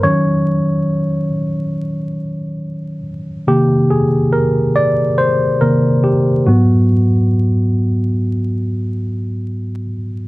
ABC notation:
X:1
M:4/4
L:1/8
Q:"Swing 16ths" 1/4=70
K:Ablyd
V:1 name="Tine electric piano"
_d6- d z | G A B d c B G _G- | _G6- G z |]
V:2 name="Tine electric piano" clef=bass
[E,_G,_D]3 z4 z | [C,E,B,]3 z2 [C,E,B,] z [A,,_G,_C] | z8 |]